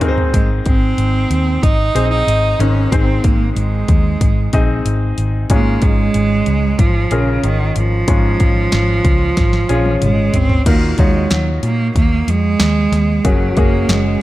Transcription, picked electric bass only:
0.34 0.60 G#1 medium
0.66 0.93 G#1 medium
0.98 1.25 G#1 medium
1.31 1.57 D#2 medium
1.63 1.89 G#1 medium
1.95 2.22 A#1 medium
2.27 2.54 G#1 medium
2.59 2.86 G#1 medium
2.92 3.19 G#1 medium
3.24 3.51 G#1 medium
3.56 3.83 G#1 medium
3.89 4.15 D#2 medium
4.21 4.47 G#1 medium
4.53 4.80 A#1 medium
4.85 5.12 G#1 medium
5.18 5.44 G#1 medium
5.50 5.76 G#1 medium
5.82 6.09 G#1 medium
6.15 6.41 G#1 medium
6.47 6.73 C#2 medium
6.79 7.05 G#1 medium
7.12 7.38 A#1 medium
7.44 7.70 G#1 medium
7.76 8.03 G#1 medium
8.08 8.34 G#1 medium
8.40 8.67 G#1 medium
8.73 8.99 G#1 medium
9.05 9.31 C#2 medium
9.37 9.64 G#1 medium
9.70 9.96 A#1 medium
10.02 10.29 G#1 medium
10.34 10.61 G#1 medium
10.66 10.93 D#2 medium
10.99 11.25 D#2 medium
11.31 11.58 D#2 medium
11.63 11.90 A#2 medium
11.95 12.22 D#2 medium
12.28 12.54 F2 medium
12.60 12.86 D#2 medium
12.92 13.19 D#2 medium
13.25 13.51 F#1 medium
13.57 13.83 F#1 medium
13.89 14.15 F#1 medium

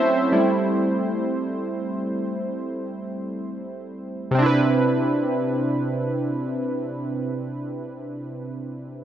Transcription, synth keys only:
0.00 3.34 C4 medium
0.00 0.34 C#4 medium
0.00 0.33 E4 medium
0.00 3.32 C5 medium
0.00 0.34 C#5 medium
0.00 0.34 E5 loud
0.32 4.35 G3 medium
0.32 4.35 A3 soft
0.32 4.35 E4 medium
4.31 7.84 C3 medium
4.31 7.88 C4 medium
4.39 7.92 D4 medium
4.39 7.95 E4 medium
4.46 7.99 B4 medium

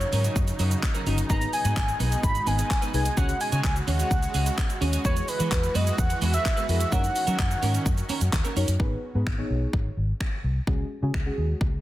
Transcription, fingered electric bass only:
0.13 0.27 G#2 medium
0.36 0.50 F#2 medium
0.59 0.74 F#2 loud
1.06 1.21 G1 loud
1.30 1.44 G#1 loud
1.65 1.72 G#2 medium
1.77 1.91 G#1 medium
2.00 2.14 B1 medium
2.23 2.38 G#1 loud
2.47 2.61 G#1 medium
2.94 3.08 C2 medium
3.17 3.32 C#2 loud
3.52 3.60 C#3 loud
3.64 3.78 C#2 loud
3.88 4.02 D#2 loud
4.11 4.25 C#2 medium
4.34 4.49 C#2 medium
4.81 4.96 D#2 medium
5.05 5.19 E2 loud
5.40 5.47 E3 loud
5.52 5.66 E2 loud
5.75 5.89 F#2 medium
5.98 6.13 E2 medium
6.22 6.36 E2 medium
6.69 6.83 F2 medium
6.92 7.07 F#2 loud
7.27 7.35 F#3 medium
7.39 7.53 F#2 medium
7.63 7.77 G#2 medium
7.86 8.00 F#2 medium
8.09 muted fingered electric bass stroke soft
8.21 8.28 F#2 medium
8.33 8.40 D#2 loud
8.56 8.64 F#2 loud
8.68 8.75 F#2 medium
8.80 8.94 G#1 loud
9.15 9.22 G#2 medium
9.27 9.41 G#1 medium
9.50 9.64 B1 medium
9.73 9.88 G#1 medium
9.97 10.11 G#1 medium
10.44 10.58 C2 medium
10.67 10.82 C#2 loud
11.02 11.10 C#3 loud
11.14 11.28 C#2 medium
11.38 11.52 D#2 medium
11.61 11.75 C#2 medium

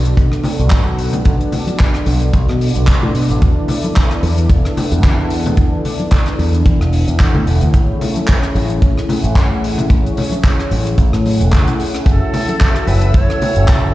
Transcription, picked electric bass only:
0.00 0.13 B1 medium
0.17 0.30 B2 medium
0.59 0.72 B1 medium
0.72 0.87 G#2 medium
0.87 1.22 B1 medium
1.26 1.38 B1 medium
2.07 2.29 B1 medium
2.34 2.46 B1 loud
2.49 2.70 B2 medium
2.76 2.86 B1 medium
3.03 3.13 A2 medium
3.15 3.27 B2 medium
3.30 3.40 A1 medium
3.42 3.54 E2 medium
4.23 4.46 E2 medium
4.50 4.62 E1 medium
4.92 5.04 E2 medium
5.04 5.18 C#3 medium
5.18 5.54 E2 medium
5.57 5.70 E2 medium
6.39 6.62 E2 medium
6.66 6.78 E2 loud
6.80 7.02 E1 medium
7.08 7.18 E2 medium
7.35 7.45 D2 medium
7.47 7.59 E1 medium
7.62 7.72 D2 loud
7.74 7.86 A1 medium
8.55 8.78 A1 medium
8.82 8.94 A2 medium
9.24 9.35 A1 medium
9.35 9.51 F#2 medium
9.51 9.87 A1 medium
9.90 10.03 A1 medium
10.71 10.94 A1 medium
10.98 11.11 A1 loud
11.13 11.35 A2 medium
11.41 11.50 E1 medium
11.53 11.65 C#2 medium
12.06 12.19 F#1 medium
12.87 13.10 F#1 medium
13.14 13.27 F#2 medium
13.57 13.69 F#1 medium
13.69 13.84 C#2 medium
13.84 13.94 F#1 medium

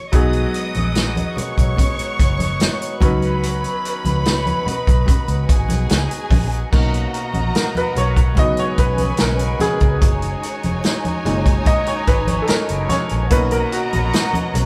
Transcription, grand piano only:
0.00 0.10 G#4 medium
0.12 2.97 F#3 medium
0.12 2.98 B3 medium
0.12 2.98 D#4 medium
0.12 2.99 G#4 medium
3.00 6.27 F#3 medium
3.00 6.27 C#4 medium
3.00 6.28 D#4 medium
3.00 6.28 B4 medium
6.72 7.92 A#3 medium
6.72 7.92 C#4 soft
6.72 7.93 D#4 medium
7.55 7.76 A#4 medium
7.77 7.98 B4 medium
7.98 8.39 C#5 medium
8.38 8.92 F#3 medium
8.38 8.93 B3 medium
8.38 8.93 D#4 medium
8.38 8.59 D#5 loud
8.59 8.80 C#5 medium
8.79 9.21 B4 medium
9.20 9.62 A#4 medium
9.61 11.73 G#4 loud
11.25 12.45 A#2 soft
11.25 12.45 G#3 soft
11.25 12.45 D#4 medium
11.67 11.86 D#5 loud
11.88 12.09 C#5 medium
12.08 12.43 B4 medium
12.42 12.49 A4 medium
12.48 12.58 A#4 medium
12.89 13.28 C#5 medium
13.31 14.66 A#3 medium
13.31 14.66 C#4 medium
13.31 14.66 D#4 medium
13.31 13.53 B4 loud
13.52 13.73 A#4 medium
13.72 14.66 F#4 medium

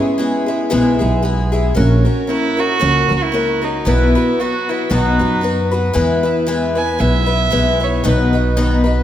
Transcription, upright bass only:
0.73 1.00 B1 medium
1.01 1.73 B1 medium
1.77 2.05 A#1 loud
2.82 3.10 C#2 loud
3.11 3.83 C#2 medium
3.87 4.14 B1 medium
4.91 5.18 B1 medium
5.20 5.92 F#2 medium
5.95 6.96 E2 medium
7.00 7.50 B1 medium
7.53 8.03 B1 medium
8.05 9.03 B1 medium

